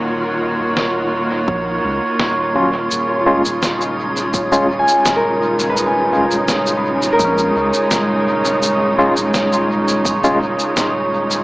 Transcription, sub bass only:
\new Staff \with { instrumentName = "Sub bass" } { \clef bass \time 4/4 \key des \mixolydian \tempo 4 = 84 ees,,8. ees,,4~ ees,,16 bes,,8 des,16 r16 ees,,4 | ees,,8. ees,,2 r16 ees,,4~ | ees,,8. ees,,4~ ees,,16 bes,,8 des,16 r16 ees,,4~ | ees,,8. ees,,2 r16 ees,,4 | }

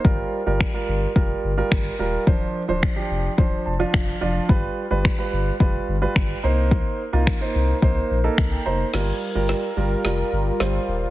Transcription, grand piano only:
\new Staff \with { instrumentName = "Grand piano" } { \time 4/4 \key g \minor \tempo 4 = 108 << { r1 | r2 r8 a''8 r8 d''8 | r1 | r2. r16 g''16 bes''8 |
r1 | } \\ { <g f' bes'>8 r16 <g f' bes'>8 <g f' bes'>8 r16 <g f' bes'>8 r16 <g f' bes'>8 r16 <g f' bes'>8 | <f d' c''>8 r16 <f d' c''>8 <f d' g'>8 r16 <f d' c''>8 r16 <f d' f'>8 r16 <f d' f'>8 | <g f' b'>8 r16 <g f' b'>8 <g f' b'>8 r16 <g f' b'>8 r16 <g f' b'>8 r16 <bes ees' c''>8~ | <bes ees' c''>8 r16 <bes ees' f'>8 <bes ees' c''>8 r16 <bes ees' c''>8 r16 <bes ees' a'>8 r16 <bes ees' c''>8 |
<g f' bes'>8 r16 <g f' bes'>8 r16 <g f' bes'>8 <g f' bes'>8. r16 <g f' c''>8. r16 | } >> }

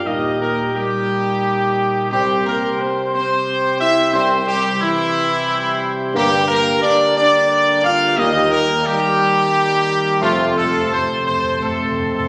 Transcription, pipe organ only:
<<
  \new Staff \with { instrumentName = "Pipe organ" } { \time 3/4 \key ees \lydian \tempo 4 = 88 << { g'2. | g'2.~ | g'2.~ | g'2. |
g'2. | c''2. | } \\ { ees'2. | c'2.~ | c'2. | bes2.~ |
bes2. | c'2. | } >> }
  \new Staff \with { instrumentName = "Pipe organ" } { \clef bass \time 3/4 \key ees \lydian << { g2.~ | g2.~ | g2. | g2.~ |
g2. | a2. | } \\ { bes,2. | c2.~ | c2. | d2. |
ees2. | c2. | } >> }
>>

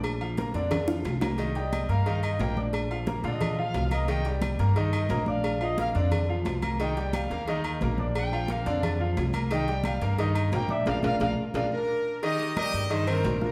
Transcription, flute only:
\new Staff \with { instrumentName = "Flute" } { \time 4/4 \key c \minor \tempo 4 = 177 r1 | r8 ees''4 f''4 ees''8 g''8 r8 | r4. ees''4 f''4 ees''8 | g''8 r2 ees''4 f''8~ |
f''8 ees''8 f''8 r2 r8 | g''4 f''4 ees''8 r4. | g''4 f''4 d''8 r4. | g''4 f''4 ees''8 r8 g''8 e''8 |
f''8 f''8 f''8 r8 f''8 r4. | r1 | }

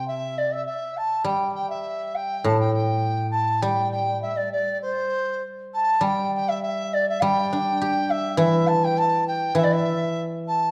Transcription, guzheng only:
\new Staff \with { instrumentName = "Guzheng" } { \clef bass \time 2/4 \tempo 4 = 101 c4 r4 | g2 | a,2 | g2~ |
g4 r4 | g2 | g8 d'8 g'4 | e2 |
e2 | }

